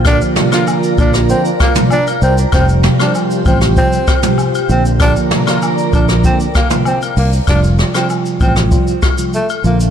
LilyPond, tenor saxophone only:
\new Staff \with { instrumentName = "Tenor saxophone" } { \time 4/4 \key bes \lydian \tempo 4 = 97 d'16 r8 f'16 r8 d'16 r16 c'16 r16 bes16 r16 d'16 r16 c'16 r16 | c'16 r8 d'16 r8 c'16 r16 c'8. r8. c'16 r16 | d'16 r8 f'16 r8 d'16 r16 c'16 r16 bes16 r16 c'16 r16 bes16 r16 | d'16 r8 c'16 r8 c'16 r4 r16 a16 r16 bes16 r16 | }